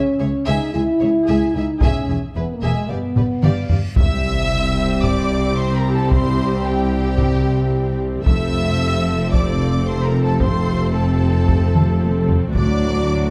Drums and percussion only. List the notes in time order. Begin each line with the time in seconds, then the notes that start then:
1.81 taiko
3.16 taiko low-mid
3.43 taiko mid
3.69 taiko low
3.96 taiko
5.04 taiko
6.11 taiko
7.19 taiko
8.26 taiko
9.33 taiko
10.40 taiko
11.48 taiko
11.75 taiko mid
12.02 taiko high
12.28 taiko low
12.55 taiko